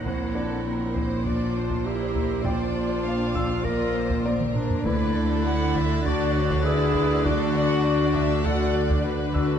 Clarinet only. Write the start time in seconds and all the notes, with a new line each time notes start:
0.05 E4
1.26 F4
1.86 G4
2.44 F4
3.65 A#4
4.55 D4
4.86 E4
6.06 F#4
6.65 G#4
7.26 F#4
8.46 A4
9.36 F#4